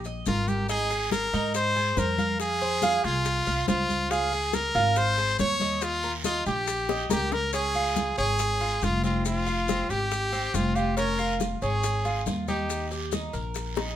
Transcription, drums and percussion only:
0.04 high bongo, high conga, maracas
0.26 high bongo, low bongo, high conga, maracas
0.48 high bongo, high conga, maracas
0.69 high bongo, high conga, long guiro, maracas
0.90 high bongo, high conga, maracas
1.11 high bongo, high conga, short guiro, maracas
1.33 high conga, short guiro, maracas
1.54 high bongo, high conga, long guiro, maracas
1.76 high bongo, high conga, maracas
1.97 high bongo, low bongo, high conga, short guiro, maracas
2.18 high bongo, high conga, short guiro, maracas
2.40 high bongo, high conga, long guiro, maracas
2.61 high bongo, high conga, maracas
2.82 high bongo, high conga, short guiro, maracas
3.04 short guiro, maracas
3.25 high bongo, high conga, long guiro, maracas
3.46 high bongo, high conga, maracas
3.68 high bongo, low bongo, high conga, short guiro, maracas
3.89 high bongo, high conga, short guiro, maracas
4.10 high bongo, high conga, long guiro, maracas
4.31 high bongo, high conga, maracas
4.53 high bongo, high conga, short guiro, maracas
4.75 high conga, short guiro, maracas
4.96 high bongo, high conga, long guiro, maracas
5.17 high bongo, high conga, maracas
5.39 high bongo, low bongo, high conga, short guiro, maracas
5.60 high bongo, high conga, short guiro, maracas
5.81 high bongo, high conga, long guiro, maracas
6.03 high bongo, high conga, maracas
6.24 high bongo, high conga, short guiro, maracas
6.46 short guiro, maracas
6.67 high bongo, high conga, long guiro, maracas
6.89 high bongo, high conga, maracas
7.10 high bongo, high conga, short guiro, maracas
7.31 low bongo, short guiro, maracas
7.53 high bongo, high conga, long guiro, maracas
7.74 high bongo, high conga, maracas
7.96 high bongo, high conga, short guiro, maracas
8.17 high conga, short guiro, maracas
8.39 high bongo, high conga, long guiro, maracas
8.60 high bongo, high conga, maracas
8.82 high bongo, low bongo, high conga, short guiro, maracas
9.04 high bongo, high conga, short guiro, maracas
9.25 high bongo, high conga, long guiro, maracas
9.47 high bongo, high conga, maracas
9.68 high bongo, high conga, short guiro, maracas
9.90 short guiro, maracas
10.11 high bongo, high conga, long guiro, maracas
10.33 high bongo, high conga, maracas
10.54 high bongo, low bongo, high conga, short guiro, maracas
10.76 high bongo, short guiro, maracas
10.97 high bongo, high conga, long guiro, maracas
11.19 high bongo, high conga, maracas
11.40 high bongo, high conga, short guiro, maracas
11.62 high conga, short guiro, maracas
11.83 high bongo, high conga, long guiro, maracas
12.05 high bongo, high conga, maracas
12.26 high bongo, low bongo, high conga, short guiro, maracas
12.48 high bongo, high conga, short guiro, maracas
12.70 high bongo, high conga, long guiro, maracas
12.91 high bongo, high conga, maracas
13.12 high bongo, high conga, short guiro, maracas
13.33 short guiro, maracas
13.54 high bongo, high conga, long guiro, maracas
13.76 high bongo, high conga, maracas

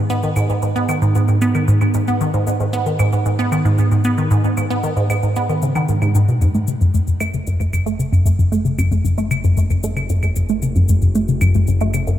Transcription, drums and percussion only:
0.10 shaker
0.23 shaker
0.36 claves, shaker
0.49 shaker
0.62 shaker
0.76 shaker
0.89 claves, shaker
1.02 shaker
1.15 shaker
1.28 shaker
1.42 shaker
1.55 claves, shaker
1.68 shaker
1.81 claves, shaker
1.94 shaker
2.08 shaker
2.21 shaker
2.34 shaker
2.47 shaker
2.60 shaker
2.73 shaker
2.86 shaker
2.99 claves, shaker
3.13 shaker
3.26 shaker
3.39 shaker
3.52 claves, shaker
3.65 shaker
3.78 shaker
3.92 shaker
4.04 shaker
4.18 shaker
4.31 shaker
4.44 shaker
4.57 claves, shaker
4.70 shaker
4.83 shaker
4.97 shaker
5.10 claves, shaker
5.23 shaker
5.36 shaker
5.49 shaker
5.62 shaker
5.75 claves, shaker
5.88 shaker
6.02 claves, shaker
6.15 shaker
6.28 shaker
6.41 shaker
6.55 shaker
6.67 shaker
6.81 shaker
6.94 shaker
7.07 shaker
7.20 claves, shaker
7.34 shaker
7.47 shaker
7.60 shaker
7.73 claves, shaker
7.87 shaker
8.00 shaker
8.13 shaker
8.26 shaker
8.39 shaker
8.52 shaker
8.65 shaker
8.79 claves, shaker
8.92 shaker
9.05 shaker
9.18 shaker
9.31 claves, shaker
9.44 shaker
9.57 shaker
9.70 shaker
9.83 shaker
9.97 claves, shaker
10.09 shaker
10.23 claves, shaker
10.36 shaker
10.49 shaker
10.62 shaker
10.76 shaker
10.89 shaker
11.02 shaker
11.15 shaker
11.28 shaker
11.41 claves, shaker
11.54 shaker
11.67 shaker
11.81 shaker
11.94 claves, shaker
12.07 shaker

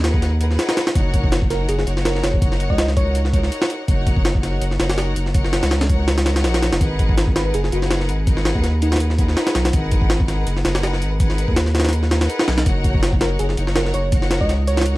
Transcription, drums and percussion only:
0.04 snare, closed hi-hat
0.14 kick
0.22 snare, closed hi-hat
0.41 closed hi-hat
0.51 snare
0.59 snare, closed hi-hat
0.69 snare, closed hi-hat
0.77 snare, closed hi-hat
0.87 snare, closed hi-hat
0.95 kick, closed hi-hat
1.14 kick, closed hi-hat
1.24 kick
1.32 snare, closed hi-hat
1.42 kick
1.50 snare, closed hi-hat
1.69 closed hi-hat
1.79 snare
1.87 closed hi-hat
1.97 snare
2.05 snare, closed hi-hat
2.15 snare
2.24 snare, closed hi-hat
2.33 kick
2.42 kick, closed hi-hat
2.52 snare
2.60 closed hi-hat
2.70 kick
2.78 snare, closed hi-hat
2.88 snare
2.97 kick, closed hi-hat
3.15 closed hi-hat
3.25 snare
3.33 kick, closed hi-hat
3.43 snare
3.52 closed hi-hat
3.62 snare
3.70 closed hi-hat
3.88 kick, closed hi-hat
4.07 kick, closed hi-hat
4.16 kick
4.25 snare, closed hi-hat
4.35 kick
4.43 snare, closed hi-hat
4.62 closed hi-hat
4.71 snare
4.80 snare, closed hi-hat
4.90 snare, closed hi-hat
4.98 snare, closed hi-hat
5.16 closed hi-hat
5.26 snare
5.34 kick, closed hi-hat
5.45 snare
5.53 snare, closed hi-hat
5.63 snare, closed hi-hat
5.71 snare, closed hi-hat
5.81 snare, closed hi-hat
5.89 kick, closed hi-hat
6.08 snare, closed hi-hat
6.18 snare, closed hi-hat
6.26 snare, closed hi-hat
6.36 snare, closed hi-hat
6.44 snare, closed hi-hat
6.54 snare, closed hi-hat
6.63 snare, closed hi-hat
6.73 snare, closed hi-hat
6.81 kick, closed hi-hat
6.99 kick, closed hi-hat
7.09 kick
7.18 snare, closed hi-hat
7.27 kick
7.36 snare, closed hi-hat
7.54 closed hi-hat
7.64 snare
7.72 closed hi-hat
7.82 snare
7.91 snare, closed hi-hat
8.01 snare
8.09 closed hi-hat
8.27 kick, closed hi-hat
8.37 snare
8.45 snare, closed hi-hat
8.55 kick
8.64 snare, closed hi-hat
8.82 closed hi-hat
8.92 snare, closed hi-hat
8.96 snare, closed hi-hat
9.00 closed hi-hat
9.10 snare
9.18 kick, closed hi-hat
9.28 snare
9.37 snare, closed hi-hat
9.47 snare, closed hi-hat
9.55 snare, closed hi-hat
9.65 snare, closed hi-hat
9.73 kick, closed hi-hat
9.92 kick, closed hi-hat
10.02 kick
10.10 snare, closed hi-hat
10.20 kick
10.28 snare, closed hi-hat
10.47 closed hi-hat
10.57 snare
10.65 snare, closed hi-hat
10.75 snare, closed hi-hat
10.83 snare, closed hi-hat
10.93 snare
11.02 closed hi-hat
11.20 kick, closed hi-hat
11.30 snare
11.38 closed hi-hat
11.48 kick
11.56 snare, closed hi-hat
11.66 snare
11.75 snare, closed hi-hat
11.80 snare, closed hi-hat
11.85 snare, closed hi-hat
11.89 snare, closed hi-hat
11.93 closed hi-hat
12.03 snare
12.11 snare, closed hi-hat
12.21 snare, closed hi-hat
12.30 closed hi-hat
12.39 snare
12.48 snare, closed hi-hat
12.58 snare, closed hi-hat
12.66 kick, closed hi-hat
12.84 kick, closed hi-hat
12.94 kick
13.03 snare, closed hi-hat
13.13 kick
13.21 snare, closed hi-hat
13.39 closed hi-hat
13.49 snare
13.57 closed hi-hat
13.67 snare
13.76 snare, closed hi-hat
13.86 snare
13.94 closed hi-hat
14.12 kick, closed hi-hat
14.22 snare
14.31 snare, closed hi-hat
14.41 kick
14.49 snare, closed hi-hat
14.67 closed hi-hat
14.77 snare, closed hi-hat
14.81 snare, closed hi-hat
14.86 closed hi-hat

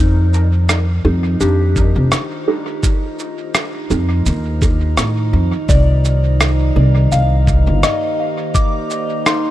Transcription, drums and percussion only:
0.33 shaker
0.69 cross-stick, shaker
1.41 shaker
1.76 kick, shaker
2.12 cross-stick, shaker
2.83 kick, shaker
3.19 shaker
3.55 cross-stick, shaker
3.90 shaker
4.26 shaker
4.62 kick, shaker
4.97 cross-stick, shaker
5.69 kick, shaker
6.05 shaker
6.41 cross-stick, shaker
7.12 shaker
7.47 kick, shaker
7.83 cross-stick, shaker
8.55 kick, shaker
8.90 shaker
9.26 cross-stick, shaker

